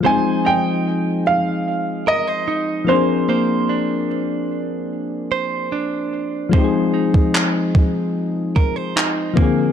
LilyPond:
<<
  \new Staff \with { instrumentName = "Grand piano" } { \time 4/4 \key f \dorian \tempo 4 = 74 aes''8 g''4 f''4 ees''4 c''8~ | c''4 r2. | r1 | }
  \new Staff \with { instrumentName = "Clean electric guitar" } { \time 4/4 \key f \dorian <f c''>8 ees'2 bes'16 c''16 ees'8 bes8 | <bes c''>8 d'2 c''8 d'4 | <f c''>8 ees'2 bes'16 c''16 ees'8 bes8 | }
  \new Staff \with { instrumentName = "Synth keys" } { \time 4/4 \key f \dorian <f aes c' ees' aes'>2.~ <f aes c' ees' aes'>8 <f bes c' d' aes'>8~ | <f bes c' d' aes'>2.~ <f bes c' d' aes'>8 r8 | <f aes c' ees' g' aes'>2.~ <f aes c' ees' g' aes'>8 <d f bes c' aes'>8 | }
  \new DrumStaff \with { instrumentName = "Drums" } \drummode { \time 4/4 r4 r4 r4 r4 | r4 r4 r4 r4 | bd8. bd16 hc8 bd8 r8 bd8 hc8 bd8 | }
>>